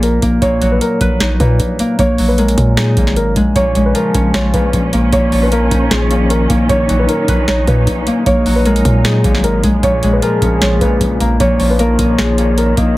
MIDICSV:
0, 0, Header, 1, 7, 480
1, 0, Start_track
1, 0, Tempo, 392157
1, 514, Time_signature, 4, 2, 24, 8
1, 15884, End_track
2, 0, Start_track
2, 0, Title_t, "Soft synth lead"
2, 0, Program_c, 0, 80
2, 12274, Note_on_c, 0, 68, 88
2, 13665, Note_off_c, 0, 68, 0
2, 13712, Note_on_c, 0, 70, 85
2, 13941, Note_off_c, 0, 70, 0
2, 14192, Note_on_c, 0, 73, 87
2, 15584, Note_off_c, 0, 73, 0
2, 15632, Note_on_c, 0, 75, 78
2, 15861, Note_off_c, 0, 75, 0
2, 15884, End_track
3, 0, Start_track
3, 0, Title_t, "Grand piano"
3, 0, Program_c, 1, 0
3, 34, Note_on_c, 1, 70, 73
3, 218, Note_off_c, 1, 70, 0
3, 511, Note_on_c, 1, 73, 118
3, 858, Note_off_c, 1, 73, 0
3, 880, Note_on_c, 1, 71, 82
3, 967, Note_off_c, 1, 71, 0
3, 995, Note_on_c, 1, 70, 89
3, 1446, Note_off_c, 1, 70, 0
3, 1473, Note_on_c, 1, 73, 84
3, 1657, Note_off_c, 1, 73, 0
3, 1716, Note_on_c, 1, 71, 73
3, 2392, Note_off_c, 1, 71, 0
3, 2434, Note_on_c, 1, 73, 112
3, 2779, Note_off_c, 1, 73, 0
3, 2795, Note_on_c, 1, 71, 81
3, 2883, Note_off_c, 1, 71, 0
3, 2917, Note_on_c, 1, 70, 78
3, 3367, Note_off_c, 1, 70, 0
3, 3393, Note_on_c, 1, 68, 80
3, 3845, Note_off_c, 1, 68, 0
3, 3873, Note_on_c, 1, 70, 83
3, 4057, Note_off_c, 1, 70, 0
3, 4354, Note_on_c, 1, 73, 117
3, 4699, Note_off_c, 1, 73, 0
3, 4720, Note_on_c, 1, 71, 84
3, 4807, Note_off_c, 1, 71, 0
3, 4836, Note_on_c, 1, 70, 89
3, 5286, Note_off_c, 1, 70, 0
3, 5311, Note_on_c, 1, 73, 88
3, 5496, Note_off_c, 1, 73, 0
3, 5555, Note_on_c, 1, 71, 78
3, 6231, Note_off_c, 1, 71, 0
3, 6275, Note_on_c, 1, 73, 113
3, 6620, Note_off_c, 1, 73, 0
3, 6644, Note_on_c, 1, 71, 76
3, 6729, Note_off_c, 1, 71, 0
3, 6755, Note_on_c, 1, 70, 88
3, 7206, Note_off_c, 1, 70, 0
3, 7233, Note_on_c, 1, 68, 80
3, 7685, Note_off_c, 1, 68, 0
3, 7714, Note_on_c, 1, 70, 76
3, 7898, Note_off_c, 1, 70, 0
3, 8191, Note_on_c, 1, 73, 126
3, 8538, Note_off_c, 1, 73, 0
3, 8560, Note_on_c, 1, 71, 82
3, 8646, Note_off_c, 1, 71, 0
3, 8675, Note_on_c, 1, 70, 92
3, 9126, Note_off_c, 1, 70, 0
3, 9153, Note_on_c, 1, 73, 87
3, 9337, Note_off_c, 1, 73, 0
3, 9397, Note_on_c, 1, 71, 78
3, 10072, Note_off_c, 1, 71, 0
3, 10114, Note_on_c, 1, 73, 113
3, 10459, Note_off_c, 1, 73, 0
3, 10476, Note_on_c, 1, 71, 86
3, 10564, Note_off_c, 1, 71, 0
3, 10597, Note_on_c, 1, 70, 81
3, 11047, Note_off_c, 1, 70, 0
3, 11073, Note_on_c, 1, 68, 82
3, 11525, Note_off_c, 1, 68, 0
3, 11553, Note_on_c, 1, 70, 84
3, 11737, Note_off_c, 1, 70, 0
3, 12034, Note_on_c, 1, 73, 116
3, 12379, Note_off_c, 1, 73, 0
3, 12400, Note_on_c, 1, 71, 80
3, 12486, Note_off_c, 1, 71, 0
3, 12515, Note_on_c, 1, 70, 88
3, 12966, Note_off_c, 1, 70, 0
3, 12990, Note_on_c, 1, 73, 89
3, 13175, Note_off_c, 1, 73, 0
3, 13234, Note_on_c, 1, 71, 81
3, 13911, Note_off_c, 1, 71, 0
3, 13955, Note_on_c, 1, 73, 110
3, 14300, Note_off_c, 1, 73, 0
3, 14324, Note_on_c, 1, 71, 82
3, 14409, Note_off_c, 1, 71, 0
3, 14435, Note_on_c, 1, 70, 89
3, 14886, Note_off_c, 1, 70, 0
3, 14913, Note_on_c, 1, 68, 80
3, 15365, Note_off_c, 1, 68, 0
3, 15395, Note_on_c, 1, 70, 79
3, 15578, Note_off_c, 1, 70, 0
3, 15884, End_track
4, 0, Start_track
4, 0, Title_t, "Harp"
4, 0, Program_c, 2, 46
4, 0, Note_on_c, 2, 46, 79
4, 0, Note_on_c, 2, 53, 78
4, 0, Note_on_c, 2, 58, 90
4, 0, Note_on_c, 2, 61, 81
4, 0, Note_on_c, 2, 63, 81
4, 0, Note_on_c, 2, 65, 89
4, 265, Note_off_c, 2, 58, 0
4, 269, Note_on_c, 2, 58, 81
4, 505, Note_off_c, 2, 46, 0
4, 519, Note_on_c, 2, 46, 92
4, 575, Note_off_c, 2, 53, 0
4, 748, Note_on_c, 2, 54, 79
4, 822, Note_off_c, 2, 65, 0
4, 942, Note_off_c, 2, 61, 0
4, 1238, Note_on_c, 2, 71, 90
4, 1312, Note_off_c, 2, 58, 0
4, 1470, Note_off_c, 2, 63, 0
4, 1475, Note_on_c, 2, 63, 94
4, 1698, Note_off_c, 2, 46, 0
4, 1713, Note_on_c, 2, 46, 78
4, 2198, Note_on_c, 2, 58, 81
4, 2432, Note_off_c, 2, 58, 0
4, 2437, Note_on_c, 2, 58, 93
4, 2495, Note_off_c, 2, 46, 0
4, 2495, Note_off_c, 2, 54, 0
4, 2511, Note_off_c, 2, 71, 0
4, 2677, Note_on_c, 2, 54, 78
4, 2920, Note_on_c, 2, 56, 89
4, 3383, Note_off_c, 2, 63, 0
4, 3388, Note_on_c, 2, 63, 100
4, 3638, Note_on_c, 2, 46, 73
4, 4105, Note_off_c, 2, 56, 0
4, 4119, Note_on_c, 2, 56, 84
4, 4343, Note_off_c, 2, 46, 0
4, 4358, Note_on_c, 2, 46, 106
4, 4415, Note_off_c, 2, 54, 0
4, 4415, Note_off_c, 2, 56, 0
4, 4601, Note_on_c, 2, 56, 87
4, 4827, Note_on_c, 2, 53, 90
4, 5075, Note_on_c, 2, 61, 81
4, 5315, Note_on_c, 2, 65, 105
4, 5543, Note_off_c, 2, 46, 0
4, 5558, Note_on_c, 2, 46, 77
4, 6029, Note_off_c, 2, 58, 0
4, 6034, Note_on_c, 2, 58, 85
4, 6260, Note_off_c, 2, 46, 0
4, 6275, Note_on_c, 2, 46, 98
4, 6335, Note_off_c, 2, 53, 0
4, 6335, Note_off_c, 2, 56, 0
4, 6515, Note_on_c, 2, 53, 78
4, 6697, Note_off_c, 2, 63, 0
4, 6751, Note_off_c, 2, 58, 0
4, 6756, Note_on_c, 2, 58, 91
4, 6988, Note_on_c, 2, 63, 82
4, 7231, Note_off_c, 2, 65, 0
4, 7236, Note_on_c, 2, 65, 92
4, 7462, Note_off_c, 2, 46, 0
4, 7476, Note_on_c, 2, 46, 80
4, 7945, Note_off_c, 2, 58, 0
4, 7950, Note_on_c, 2, 58, 82
4, 8186, Note_off_c, 2, 46, 0
4, 8201, Note_on_c, 2, 46, 99
4, 8255, Note_off_c, 2, 53, 0
4, 8430, Note_on_c, 2, 54, 80
4, 8503, Note_off_c, 2, 65, 0
4, 8622, Note_off_c, 2, 61, 0
4, 8919, Note_on_c, 2, 71, 92
4, 8992, Note_off_c, 2, 58, 0
4, 9150, Note_off_c, 2, 63, 0
4, 9155, Note_on_c, 2, 63, 93
4, 9380, Note_off_c, 2, 46, 0
4, 9394, Note_on_c, 2, 46, 76
4, 9879, Note_on_c, 2, 58, 85
4, 10113, Note_off_c, 2, 58, 0
4, 10118, Note_on_c, 2, 58, 93
4, 10175, Note_off_c, 2, 46, 0
4, 10175, Note_off_c, 2, 54, 0
4, 10192, Note_off_c, 2, 71, 0
4, 10357, Note_on_c, 2, 54, 83
4, 10600, Note_on_c, 2, 56, 92
4, 11062, Note_off_c, 2, 63, 0
4, 11067, Note_on_c, 2, 63, 100
4, 11319, Note_on_c, 2, 46, 81
4, 11785, Note_off_c, 2, 56, 0
4, 11800, Note_on_c, 2, 56, 89
4, 12023, Note_off_c, 2, 46, 0
4, 12038, Note_on_c, 2, 46, 101
4, 12095, Note_off_c, 2, 54, 0
4, 12095, Note_off_c, 2, 56, 0
4, 12282, Note_on_c, 2, 56, 86
4, 12508, Note_on_c, 2, 53, 91
4, 12754, Note_on_c, 2, 61, 82
4, 12995, Note_on_c, 2, 65, 106
4, 13223, Note_off_c, 2, 46, 0
4, 13238, Note_on_c, 2, 46, 77
4, 13708, Note_off_c, 2, 58, 0
4, 13713, Note_on_c, 2, 58, 85
4, 13940, Note_off_c, 2, 46, 0
4, 13955, Note_on_c, 2, 46, 105
4, 14015, Note_off_c, 2, 53, 0
4, 14015, Note_off_c, 2, 56, 0
4, 14194, Note_on_c, 2, 53, 77
4, 14377, Note_off_c, 2, 63, 0
4, 14432, Note_off_c, 2, 58, 0
4, 14437, Note_on_c, 2, 58, 98
4, 14669, Note_on_c, 2, 63, 83
4, 14911, Note_off_c, 2, 65, 0
4, 14916, Note_on_c, 2, 65, 96
4, 15142, Note_off_c, 2, 46, 0
4, 15156, Note_on_c, 2, 46, 80
4, 15625, Note_off_c, 2, 58, 0
4, 15630, Note_on_c, 2, 58, 81
4, 15866, Note_off_c, 2, 46, 0
4, 15884, Note_off_c, 2, 53, 0
4, 15884, Note_off_c, 2, 58, 0
4, 15884, Note_off_c, 2, 61, 0
4, 15884, Note_off_c, 2, 63, 0
4, 15884, Note_off_c, 2, 65, 0
4, 15884, End_track
5, 0, Start_track
5, 0, Title_t, "String section"
5, 0, Program_c, 3, 48
5, 4355, Note_on_c, 3, 49, 82
5, 4355, Note_on_c, 3, 56, 73
5, 4355, Note_on_c, 3, 61, 91
5, 6255, Note_off_c, 3, 49, 0
5, 6255, Note_off_c, 3, 56, 0
5, 6275, Note_on_c, 3, 51, 83
5, 6275, Note_on_c, 3, 53, 73
5, 8175, Note_off_c, 3, 53, 0
5, 8195, Note_on_c, 3, 63, 89
5, 10065, Note_off_c, 3, 61, 0
5, 10076, Note_off_c, 3, 51, 0
5, 10095, Note_off_c, 3, 63, 0
5, 10113, Note_on_c, 3, 56, 73
5, 10113, Note_on_c, 3, 63, 91
5, 10114, Note_on_c, 3, 54, 85
5, 12014, Note_off_c, 3, 63, 0
5, 12015, Note_off_c, 3, 54, 0
5, 12034, Note_on_c, 3, 46, 90
5, 12034, Note_on_c, 3, 49, 80
5, 13915, Note_off_c, 3, 56, 0
5, 13935, Note_off_c, 3, 46, 0
5, 13935, Note_off_c, 3, 49, 0
5, 13954, Note_on_c, 3, 51, 84
5, 13954, Note_on_c, 3, 53, 76
5, 15855, Note_off_c, 3, 53, 0
5, 15884, Note_off_c, 3, 51, 0
5, 15884, End_track
6, 0, Start_track
6, 0, Title_t, "808-style bass"
6, 0, Program_c, 4, 38
6, 0, Note_on_c, 4, 34, 105
6, 236, Note_off_c, 4, 34, 0
6, 275, Note_on_c, 4, 34, 105
6, 505, Note_off_c, 4, 34, 0
6, 514, Note_on_c, 4, 34, 111
6, 975, Note_off_c, 4, 34, 0
6, 1234, Note_on_c, 4, 34, 104
6, 1695, Note_off_c, 4, 34, 0
6, 1714, Note_on_c, 4, 46, 104
6, 1944, Note_off_c, 4, 46, 0
6, 1953, Note_on_c, 4, 34, 109
6, 2184, Note_off_c, 4, 34, 0
6, 2434, Note_on_c, 4, 34, 113
6, 3125, Note_off_c, 4, 34, 0
6, 3153, Note_on_c, 4, 46, 101
6, 3614, Note_off_c, 4, 46, 0
6, 3634, Note_on_c, 4, 32, 108
6, 4095, Note_off_c, 4, 32, 0
6, 4114, Note_on_c, 4, 34, 103
6, 4345, Note_off_c, 4, 34, 0
6, 4353, Note_on_c, 4, 34, 115
6, 4814, Note_off_c, 4, 34, 0
6, 5073, Note_on_c, 4, 34, 104
6, 5535, Note_off_c, 4, 34, 0
6, 5554, Note_on_c, 4, 34, 111
6, 5784, Note_off_c, 4, 34, 0
6, 5794, Note_on_c, 4, 34, 110
6, 6255, Note_off_c, 4, 34, 0
6, 6274, Note_on_c, 4, 34, 110
6, 6965, Note_off_c, 4, 34, 0
6, 6994, Note_on_c, 4, 34, 105
6, 7915, Note_off_c, 4, 34, 0
6, 7955, Note_on_c, 4, 34, 109
6, 8185, Note_off_c, 4, 34, 0
6, 8194, Note_on_c, 4, 34, 112
6, 8655, Note_off_c, 4, 34, 0
6, 8914, Note_on_c, 4, 34, 104
6, 9374, Note_off_c, 4, 34, 0
6, 9394, Note_on_c, 4, 46, 106
6, 9624, Note_off_c, 4, 46, 0
6, 9634, Note_on_c, 4, 34, 112
6, 9864, Note_off_c, 4, 34, 0
6, 10114, Note_on_c, 4, 34, 115
6, 10805, Note_off_c, 4, 34, 0
6, 10834, Note_on_c, 4, 46, 106
6, 11295, Note_off_c, 4, 46, 0
6, 11314, Note_on_c, 4, 32, 111
6, 11775, Note_off_c, 4, 32, 0
6, 11794, Note_on_c, 4, 34, 107
6, 12025, Note_off_c, 4, 34, 0
6, 12034, Note_on_c, 4, 34, 114
6, 12495, Note_off_c, 4, 34, 0
6, 12754, Note_on_c, 4, 34, 105
6, 13215, Note_off_c, 4, 34, 0
6, 13234, Note_on_c, 4, 34, 110
6, 13464, Note_off_c, 4, 34, 0
6, 13474, Note_on_c, 4, 34, 107
6, 13935, Note_off_c, 4, 34, 0
6, 13954, Note_on_c, 4, 34, 115
6, 14645, Note_off_c, 4, 34, 0
6, 14674, Note_on_c, 4, 34, 106
6, 15595, Note_off_c, 4, 34, 0
6, 15635, Note_on_c, 4, 34, 104
6, 15865, Note_off_c, 4, 34, 0
6, 15884, End_track
7, 0, Start_track
7, 0, Title_t, "Drums"
7, 34, Note_on_c, 9, 42, 85
7, 156, Note_off_c, 9, 42, 0
7, 274, Note_on_c, 9, 42, 79
7, 275, Note_on_c, 9, 36, 102
7, 396, Note_off_c, 9, 42, 0
7, 397, Note_off_c, 9, 36, 0
7, 513, Note_on_c, 9, 42, 80
7, 514, Note_on_c, 9, 36, 118
7, 636, Note_off_c, 9, 36, 0
7, 636, Note_off_c, 9, 42, 0
7, 753, Note_on_c, 9, 42, 76
7, 876, Note_off_c, 9, 42, 0
7, 994, Note_on_c, 9, 42, 74
7, 1116, Note_off_c, 9, 42, 0
7, 1234, Note_on_c, 9, 36, 102
7, 1234, Note_on_c, 9, 42, 90
7, 1356, Note_off_c, 9, 36, 0
7, 1356, Note_off_c, 9, 42, 0
7, 1474, Note_on_c, 9, 38, 121
7, 1474, Note_on_c, 9, 42, 81
7, 1596, Note_off_c, 9, 38, 0
7, 1596, Note_off_c, 9, 42, 0
7, 1714, Note_on_c, 9, 36, 98
7, 1714, Note_on_c, 9, 42, 74
7, 1836, Note_off_c, 9, 36, 0
7, 1836, Note_off_c, 9, 42, 0
7, 1953, Note_on_c, 9, 36, 88
7, 1954, Note_on_c, 9, 42, 82
7, 2076, Note_off_c, 9, 36, 0
7, 2076, Note_off_c, 9, 42, 0
7, 2194, Note_on_c, 9, 42, 83
7, 2316, Note_off_c, 9, 42, 0
7, 2434, Note_on_c, 9, 36, 114
7, 2434, Note_on_c, 9, 42, 81
7, 2556, Note_off_c, 9, 36, 0
7, 2556, Note_off_c, 9, 42, 0
7, 2674, Note_on_c, 9, 46, 74
7, 2796, Note_off_c, 9, 46, 0
7, 2914, Note_on_c, 9, 42, 61
7, 3036, Note_off_c, 9, 42, 0
7, 3041, Note_on_c, 9, 42, 62
7, 3153, Note_on_c, 9, 36, 99
7, 3154, Note_off_c, 9, 42, 0
7, 3154, Note_on_c, 9, 42, 88
7, 3276, Note_off_c, 9, 36, 0
7, 3276, Note_off_c, 9, 42, 0
7, 3394, Note_on_c, 9, 38, 122
7, 3394, Note_on_c, 9, 42, 80
7, 3516, Note_off_c, 9, 42, 0
7, 3517, Note_off_c, 9, 38, 0
7, 3634, Note_on_c, 9, 36, 101
7, 3634, Note_on_c, 9, 42, 76
7, 3756, Note_off_c, 9, 36, 0
7, 3756, Note_off_c, 9, 42, 0
7, 3760, Note_on_c, 9, 38, 68
7, 3873, Note_on_c, 9, 42, 81
7, 3883, Note_off_c, 9, 38, 0
7, 3996, Note_off_c, 9, 42, 0
7, 4113, Note_on_c, 9, 42, 81
7, 4114, Note_on_c, 9, 36, 104
7, 4236, Note_off_c, 9, 42, 0
7, 4237, Note_off_c, 9, 36, 0
7, 4353, Note_on_c, 9, 36, 123
7, 4353, Note_on_c, 9, 42, 81
7, 4476, Note_off_c, 9, 36, 0
7, 4476, Note_off_c, 9, 42, 0
7, 4593, Note_on_c, 9, 42, 75
7, 4716, Note_off_c, 9, 42, 0
7, 4834, Note_on_c, 9, 42, 75
7, 4956, Note_off_c, 9, 42, 0
7, 5073, Note_on_c, 9, 36, 104
7, 5074, Note_on_c, 9, 42, 92
7, 5196, Note_off_c, 9, 36, 0
7, 5196, Note_off_c, 9, 42, 0
7, 5314, Note_on_c, 9, 38, 120
7, 5314, Note_on_c, 9, 42, 83
7, 5436, Note_off_c, 9, 42, 0
7, 5437, Note_off_c, 9, 38, 0
7, 5554, Note_on_c, 9, 36, 104
7, 5554, Note_on_c, 9, 42, 75
7, 5676, Note_off_c, 9, 36, 0
7, 5676, Note_off_c, 9, 42, 0
7, 5793, Note_on_c, 9, 36, 94
7, 5794, Note_on_c, 9, 42, 86
7, 5916, Note_off_c, 9, 36, 0
7, 5916, Note_off_c, 9, 42, 0
7, 6034, Note_on_c, 9, 42, 85
7, 6156, Note_off_c, 9, 42, 0
7, 6273, Note_on_c, 9, 42, 84
7, 6274, Note_on_c, 9, 36, 116
7, 6396, Note_off_c, 9, 36, 0
7, 6396, Note_off_c, 9, 42, 0
7, 6514, Note_on_c, 9, 46, 74
7, 6636, Note_off_c, 9, 46, 0
7, 6754, Note_on_c, 9, 42, 75
7, 6876, Note_off_c, 9, 42, 0
7, 6994, Note_on_c, 9, 36, 101
7, 6994, Note_on_c, 9, 42, 91
7, 7116, Note_off_c, 9, 36, 0
7, 7116, Note_off_c, 9, 42, 0
7, 7234, Note_on_c, 9, 38, 124
7, 7234, Note_on_c, 9, 42, 84
7, 7356, Note_off_c, 9, 38, 0
7, 7356, Note_off_c, 9, 42, 0
7, 7474, Note_on_c, 9, 42, 74
7, 7597, Note_off_c, 9, 42, 0
7, 7714, Note_on_c, 9, 42, 85
7, 7836, Note_off_c, 9, 42, 0
7, 7954, Note_on_c, 9, 42, 84
7, 7955, Note_on_c, 9, 36, 104
7, 8076, Note_off_c, 9, 42, 0
7, 8077, Note_off_c, 9, 36, 0
7, 8194, Note_on_c, 9, 36, 121
7, 8194, Note_on_c, 9, 42, 82
7, 8316, Note_off_c, 9, 36, 0
7, 8316, Note_off_c, 9, 42, 0
7, 8434, Note_on_c, 9, 42, 75
7, 8556, Note_off_c, 9, 42, 0
7, 8674, Note_on_c, 9, 42, 76
7, 8797, Note_off_c, 9, 42, 0
7, 8914, Note_on_c, 9, 36, 103
7, 8914, Note_on_c, 9, 42, 92
7, 9036, Note_off_c, 9, 36, 0
7, 9036, Note_off_c, 9, 42, 0
7, 9154, Note_on_c, 9, 38, 126
7, 9154, Note_on_c, 9, 42, 81
7, 9276, Note_off_c, 9, 38, 0
7, 9276, Note_off_c, 9, 42, 0
7, 9394, Note_on_c, 9, 36, 102
7, 9394, Note_on_c, 9, 42, 78
7, 9516, Note_off_c, 9, 36, 0
7, 9516, Note_off_c, 9, 42, 0
7, 9634, Note_on_c, 9, 36, 91
7, 9634, Note_on_c, 9, 42, 88
7, 9756, Note_off_c, 9, 36, 0
7, 9756, Note_off_c, 9, 42, 0
7, 9874, Note_on_c, 9, 42, 84
7, 9996, Note_off_c, 9, 42, 0
7, 10114, Note_on_c, 9, 36, 116
7, 10114, Note_on_c, 9, 42, 84
7, 10236, Note_off_c, 9, 36, 0
7, 10236, Note_off_c, 9, 42, 0
7, 10354, Note_on_c, 9, 46, 77
7, 10476, Note_off_c, 9, 46, 0
7, 10594, Note_on_c, 9, 42, 67
7, 10717, Note_off_c, 9, 42, 0
7, 10721, Note_on_c, 9, 42, 66
7, 10834, Note_off_c, 9, 42, 0
7, 10834, Note_on_c, 9, 36, 102
7, 10834, Note_on_c, 9, 42, 89
7, 10956, Note_off_c, 9, 36, 0
7, 10956, Note_off_c, 9, 42, 0
7, 11074, Note_on_c, 9, 38, 122
7, 11074, Note_on_c, 9, 42, 79
7, 11196, Note_off_c, 9, 42, 0
7, 11197, Note_off_c, 9, 38, 0
7, 11314, Note_on_c, 9, 36, 101
7, 11314, Note_on_c, 9, 42, 75
7, 11436, Note_off_c, 9, 36, 0
7, 11436, Note_off_c, 9, 42, 0
7, 11440, Note_on_c, 9, 38, 74
7, 11554, Note_on_c, 9, 42, 86
7, 11563, Note_off_c, 9, 38, 0
7, 11676, Note_off_c, 9, 42, 0
7, 11793, Note_on_c, 9, 42, 84
7, 11794, Note_on_c, 9, 36, 109
7, 11916, Note_off_c, 9, 42, 0
7, 11917, Note_off_c, 9, 36, 0
7, 12034, Note_on_c, 9, 36, 119
7, 12034, Note_on_c, 9, 42, 85
7, 12156, Note_off_c, 9, 36, 0
7, 12156, Note_off_c, 9, 42, 0
7, 12274, Note_on_c, 9, 42, 76
7, 12396, Note_off_c, 9, 42, 0
7, 12514, Note_on_c, 9, 42, 76
7, 12636, Note_off_c, 9, 42, 0
7, 12753, Note_on_c, 9, 36, 104
7, 12754, Note_on_c, 9, 42, 90
7, 12876, Note_off_c, 9, 36, 0
7, 12876, Note_off_c, 9, 42, 0
7, 12994, Note_on_c, 9, 38, 122
7, 12994, Note_on_c, 9, 42, 82
7, 13116, Note_off_c, 9, 42, 0
7, 13117, Note_off_c, 9, 38, 0
7, 13234, Note_on_c, 9, 36, 104
7, 13234, Note_on_c, 9, 42, 74
7, 13357, Note_off_c, 9, 36, 0
7, 13357, Note_off_c, 9, 42, 0
7, 13474, Note_on_c, 9, 36, 95
7, 13474, Note_on_c, 9, 42, 87
7, 13596, Note_off_c, 9, 36, 0
7, 13597, Note_off_c, 9, 42, 0
7, 13715, Note_on_c, 9, 42, 83
7, 13837, Note_off_c, 9, 42, 0
7, 13954, Note_on_c, 9, 36, 116
7, 13954, Note_on_c, 9, 42, 82
7, 14076, Note_off_c, 9, 36, 0
7, 14077, Note_off_c, 9, 42, 0
7, 14194, Note_on_c, 9, 46, 75
7, 14317, Note_off_c, 9, 46, 0
7, 14434, Note_on_c, 9, 42, 76
7, 14557, Note_off_c, 9, 42, 0
7, 14674, Note_on_c, 9, 36, 99
7, 14674, Note_on_c, 9, 42, 93
7, 14796, Note_off_c, 9, 36, 0
7, 14796, Note_off_c, 9, 42, 0
7, 14914, Note_on_c, 9, 38, 125
7, 14914, Note_on_c, 9, 42, 84
7, 15037, Note_off_c, 9, 38, 0
7, 15037, Note_off_c, 9, 42, 0
7, 15154, Note_on_c, 9, 42, 76
7, 15277, Note_off_c, 9, 42, 0
7, 15394, Note_on_c, 9, 42, 85
7, 15516, Note_off_c, 9, 42, 0
7, 15634, Note_on_c, 9, 42, 84
7, 15635, Note_on_c, 9, 36, 107
7, 15757, Note_off_c, 9, 36, 0
7, 15757, Note_off_c, 9, 42, 0
7, 15884, End_track
0, 0, End_of_file